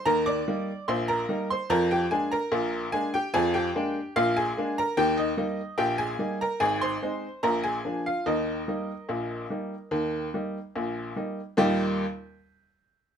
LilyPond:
<<
  \new Staff \with { instrumentName = "Upright piano" } { \time 2/4 \key ees \major \tempo 4 = 73 <bes' bes''>16 <d'' d'''>8. <c'' c'''>16 <bes' bes''>8 <c'' c'''>16 | <bes' bes''>16 <g' g''>16 <aes' aes''>16 <bes' bes''>8. <aes' aes''>16 <g' g''>16 | <aes' aes''>16 <g' g''>8. <f' f''>16 <aes' aes''>8 <bes' bes''>16 | <g' g''>16 <ees' ees''>8. <g' g''>16 <aes' aes''>8 <bes' bes''>16 |
<aes' aes''>16 <c'' c'''>8. <bes' bes''>16 <aes' aes''>8 <f' f''>16 | <ees' bes' ees''>2~ | <ees' bes' ees''>4. r8 | <ees, bes, g bes ees' g'>8 r4. | }
  \new Staff \with { instrumentName = "Upright piano" } { \clef bass \time 2/4 \key ees \major <ees, ees>8 <g bes ees'>8 <bes,, bes,>8 <g bes ees'>8 | <f, f>8 <aes bes d'>8 <bes,, bes,>8 <aes bes d'>8 | <f, f>8 <aes bes d'>8 <bes,, bes,>8 <aes bes d'>8 | <ees, ees>8 <g bes ees'>8 <bes,, bes,>8 <g bes ees'>8 |
<aes,, aes,>8 <aes c' ees'>8 <bes,, bes,>8 <f bes d'>8 | <ees, ees>8 <g bes ees'>8 <bes,, bes,>8 <g bes ees'>8 | <ees, ees>8 <g bes ees'>8 <bes,, bes,>8 <g bes ees'>8 | r2 | }
>>